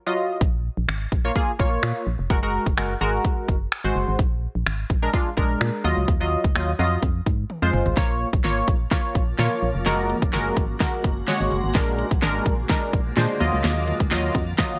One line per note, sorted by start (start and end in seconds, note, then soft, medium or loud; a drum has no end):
0.06 0.41 F#3 medium
0.06 0.41 F4 medium
0.06 0.41 D#5 medium
0.41 0.69 A#1 loud
0.41 kick loud
0.77 0.86 A#1 medium
0.88 1.07 G#1 loud
0.88 finger snap loud
1.12 1.30 A#1 medium
1.12 kick medium
1.24 1.32 A#3 medium
1.24 1.32 F4 medium
1.24 1.32 C#5 loud
1.36 1.51 A#3 loud
1.36 1.52 F4 medium
1.36 1.52 G#4 loud
1.36 kick loud
1.59 1.78 A#1 medium
1.59 2.05 A#3 medium
1.59 2.05 F4 medium
1.59 2.06 C#5 loud
1.59 kick medium
1.83 1.93 A#2 loud
1.83 finger snap loud
2.07 2.16 A#1 medium
2.19 2.28 F1 medium
2.30 2.58 F#1 loud
2.30 2.38 G#3 medium
2.30 2.38 F#4 medium
2.30 2.38 A#4 loud
2.30 kick loud
2.43 2.66 G#3 medium
2.43 2.66 F#4 medium
2.43 2.66 A#4 loud
2.66 2.75 F1 medium
2.66 kick medium
2.77 2.96 F#1 loud
2.77 2.93 G#3 loud
2.77 2.93 F#4 medium
2.77 2.93 A#4 loud
2.77 finger snap loud
3.01 3.19 G#1 medium
3.01 3.55 G#3 medium
3.01 3.55 F#4 medium
3.01 3.55 A#4 loud
3.25 kick medium
3.48 3.67 F#1 medium
3.48 kick medium
3.72 finger snap loud
3.84 3.93 G#1 medium
3.84 4.19 G#3 medium
3.84 4.19 F#4 medium
3.84 4.19 C5 medium
3.95 4.05 F#1 medium
4.08 4.17 G#1 medium
4.19 4.47 A#1 loud
4.19 kick loud
4.55 4.64 A#1 medium
4.66 4.85 G#1 medium
4.66 finger snap loud
4.90 5.08 A#1 loud
4.90 kick medium
5.02 5.10 G#3 loud
5.02 5.10 D4 medium
5.02 5.10 A#4 loud
5.13 5.29 G#3 loud
5.13 5.29 D4 medium
5.13 5.30 F4 loud
5.13 kick loud
5.37 5.56 A#1 medium
5.37 5.83 G#3 loud
5.37 5.83 D4 medium
5.37 5.83 A#4 loud
5.37 kick medium
5.61 5.71 A#2 loud
5.61 finger snap loud
5.84 5.94 D#2 loud
5.84 6.13 F#3 medium
5.84 6.13 F4 medium
5.84 6.13 D#5 loud
5.97 6.06 C#2 medium
6.08 6.36 D#2 loud
6.08 kick loud
6.20 6.44 F#3 medium
6.20 6.44 F4 medium
6.20 6.44 D#5 loud
6.44 6.53 C#2 medium
6.44 kick medium
6.55 6.74 D#2 loud
6.55 6.71 F#3 loud
6.55 6.71 F4 medium
6.55 6.71 D#5 loud
6.55 finger snap loud
6.79 6.97 F2 medium
6.79 7.03 F#3 medium
6.79 7.03 F4 medium
6.79 7.03 D#5 loud
7.03 7.21 F2 loud
7.03 kick medium
7.26 7.45 G#2 medium
7.26 kick medium
7.50 high tom medium
7.62 7.71 F2 medium
7.62 7.97 G#3 medium
7.62 7.96 F4 medium
7.62 7.97 C5 medium
7.73 7.83 F#1 loud
7.73 mid tom medium
7.86 7.95 G#1 medium
7.86 floor tom medium
7.97 8.25 A#1 loud
7.97 11.71 C#3 medium
7.97 9.84 F3 medium
7.97 8.28 A#3 medium
7.97 11.71 A#3 medium
7.97 8.28 F4 medium
7.97 9.84 F4 medium
7.97 8.28 C#5 loud
7.97 kick loud
7.97 snare soft
8.33 8.42 A#1 medium
8.33 kick medium
8.44 8.63 G#1 medium
8.44 8.75 A#3 medium
8.44 8.75 F4 medium
8.44 8.76 C#5 loud
8.44 snare medium
8.68 8.86 A#1 medium
8.68 kick medium
8.91 9.23 A#3 medium
8.91 9.23 F4 medium
8.91 9.23 C#5 medium
8.91 kick loud
8.91 snare medium
9.15 9.34 A#1 medium
9.15 kick medium
9.38 9.48 A#2 loud
9.38 9.70 A#3 medium
9.38 9.70 F4 medium
9.38 9.70 C#5 medium
9.38 snare medium
9.62 9.72 A#1 medium
9.75 9.84 F1 loud
9.86 10.14 F#1 loud
9.86 10.17 G#3 loud
9.86 13.37 G#3 medium
9.86 10.17 F#4 medium
9.86 11.73 F#4 medium
9.86 10.17 A#4 loud
9.86 snare medium
9.86 closed hi-hat medium
10.10 closed hi-hat medium
10.22 10.31 F1 medium
10.22 kick medium
10.33 10.52 F#1 loud
10.33 10.64 G#3 loud
10.33 10.64 F#4 medium
10.33 10.65 A#4 loud
10.33 snare medium
10.33 closed hi-hat medium
10.56 10.75 G#1 medium
10.56 kick medium
10.56 closed hi-hat medium
10.80 11.11 G#3 medium
10.80 11.12 F#4 medium
10.80 11.12 A#4 medium
10.80 kick loud
10.80 snare medium
10.80 closed hi-hat loud
11.04 11.23 F#1 medium
11.04 kick medium
11.04 closed hi-hat medium
11.27 11.59 G#3 medium
11.27 11.59 F#4 medium
11.27 11.59 C#5 medium
11.27 snare medium
11.27 closed hi-hat loud
11.40 11.49 G#1 medium
11.51 11.61 F#1 medium
11.51 closed hi-hat medium
11.64 11.73 G#1 medium
11.75 12.03 A#1 loud
11.75 13.39 D3 medium
11.75 12.06 G#3 loud
11.75 14.79 A#3 medium
11.75 12.06 D4 medium
11.75 14.79 F4 medium
11.75 12.06 A#4 loud
11.75 kick loud
11.75 snare medium
11.75 closed hi-hat medium
11.98 closed hi-hat medium
12.11 12.20 A#1 medium
12.11 kick medium
12.22 12.41 G#1 medium
12.22 12.53 G#3 loud
12.22 12.53 D4 medium
12.22 12.54 A#4 loud
12.22 snare medium
12.22 closed hi-hat medium
12.46 12.64 A#1 medium
12.46 kick medium
12.46 closed hi-hat medium
12.69 13.01 G#3 medium
12.69 13.01 D4 medium
12.69 13.01 A#4 loud
12.69 kick loud
12.69 snare medium
12.69 closed hi-hat loud
12.93 13.12 A#1 medium
12.93 kick medium
12.93 closed hi-hat medium
13.17 13.27 A#2 loud
13.17 13.40 G#3 medium
13.17 13.40 D4 medium
13.17 13.41 C5 medium
13.17 snare medium
13.17 closed hi-hat loud
13.40 13.50 D#2 loud
13.40 14.79 D#3 medium
13.40 13.98 F#3 medium
13.40 14.79 F#3 medium
13.40 13.98 F4 medium
13.40 13.98 D#5 loud
13.40 closed hi-hat medium
13.53 13.62 C#2 medium
13.64 13.92 D#2 loud
13.64 snare medium
13.64 closed hi-hat medium
13.88 closed hi-hat medium
14.00 14.09 C#2 medium
14.00 kick medium
14.11 14.30 D#2 medium
14.11 14.42 F#3 loud
14.11 14.42 F4 medium
14.11 14.43 D#5 loud
14.11 snare medium
14.11 closed hi-hat medium
14.34 14.53 F2 medium
14.34 kick medium
14.34 closed hi-hat medium
14.58 14.79 F#3 medium
14.58 14.79 F4 medium
14.58 14.79 D#5 loud
14.58 kick loud
14.58 snare medium
14.58 closed hi-hat loud